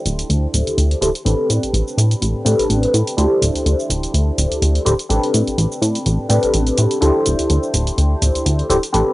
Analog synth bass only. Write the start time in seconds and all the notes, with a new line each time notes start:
0.06 D1
0.30 D2
0.54 D1
0.78 D2
1.02 D1
1.26 A1
1.50 A2
1.63 A1
1.73 A1
1.98 A2
2.22 A1
2.35 A2
2.46 A2
2.59 A1
2.70 A1
2.94 A2
3.18 D2
3.42 D1
3.55 D2
3.66 D2
3.90 D1
4.14 D2
4.38 D1
4.51 D2
4.62 D2
4.86 D1
5.10 A1
5.34 A2
5.47 A1
5.58 A1
5.82 A2
6.06 A1
6.19 A2
6.30 A2
6.43 A1
6.54 A1
6.78 A2
7.02 D2
7.26 D1
7.39 D2
7.50 D2
7.74 D1
7.98 D2
8.22 D1
8.35 D2
8.46 D2
8.70 D1
8.94 A1